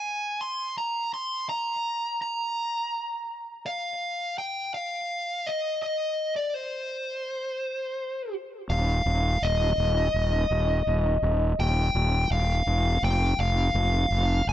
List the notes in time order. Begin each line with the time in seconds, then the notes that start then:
Already playing: G#5
0.41 C6
0.78 A#5
1.14 C6
1.49 A#5
2.22 A#5
3.66 F5
4.38 G5
4.74 F5
5.47 D#5
5.82 D#5
6.36 D5
6.54 C5
8.70 D#1 F5
9.06 D#1
9.42 D#1 D#5
9.78 D#1
10.14 D#1
10.51 D#1
10.87 D#1
11.22 D#1
11.59 D#1 G5
11.95 D#1
12.31 D#1 F5
12.67 E1
13.03 F1 G5
13.39 F1 F5
13.74 F1
14.10 F1
14.47 F1 G#5